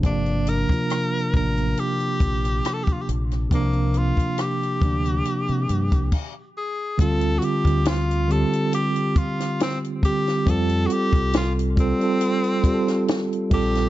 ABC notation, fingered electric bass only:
X:1
M:4/4
L:1/16
Q:"Swing 16ths" 1/4=69
K:Dphr
V:1 name="Fingered electric bass" clef=bass
G,,,3 z3 A,,,2 z2 B,,,2 z2 B,,,2 | C,,3 z3 D,,2 z C, G,, C,, z4 | D,,2 z D,,4 z8 z | F,,2 z C,,4 z6 z B,,,2 |]